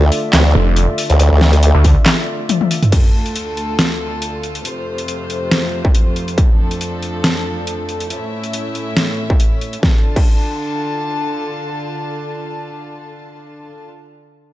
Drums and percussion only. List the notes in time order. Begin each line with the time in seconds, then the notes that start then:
0.12 open hi-hat
0.33 snare, clap, closed hi-hat
0.76 closed hi-hat
0.98 open hi-hat
1.10 closed hi-hat
1.20 closed hi-hat
1.41 snare
1.53 closed hi-hat
1.63 closed hi-hat
1.84 kick, open hi-hat
2.06 snare, clap, closed hi-hat
2.49 closed hi-hat, high tom
2.61 high tom
2.71 open hi-hat
2.83 closed hi-hat, mid tom
2.92 kick, closed hi-hat, crash
3.26 closed hi-hat
3.36 closed hi-hat
3.57 closed hi-hat
3.79 snare, closed hi-hat
4.22 closed hi-hat
4.43 closed hi-hat
4.55 closed hi-hat
4.65 closed hi-hat
4.98 closed hi-hat
5.08 closed hi-hat
5.30 closed hi-hat
5.51 snare, closed hi-hat
5.85 kick
5.95 closed hi-hat
6.16 closed hi-hat
6.28 closed hi-hat
6.38 kick, closed hi-hat
6.71 closed hi-hat
6.81 closed hi-hat
7.03 closed hi-hat
7.24 snare, closed hi-hat
7.67 closed hi-hat
7.89 closed hi-hat
8.00 closed hi-hat
8.10 closed hi-hat
8.44 closed hi-hat
8.53 closed hi-hat
8.75 closed hi-hat
8.97 snare, closed hi-hat
9.30 kick
9.40 closed hi-hat
9.61 closed hi-hat
9.73 closed hi-hat
9.83 kick, snare
10.16 kick, crash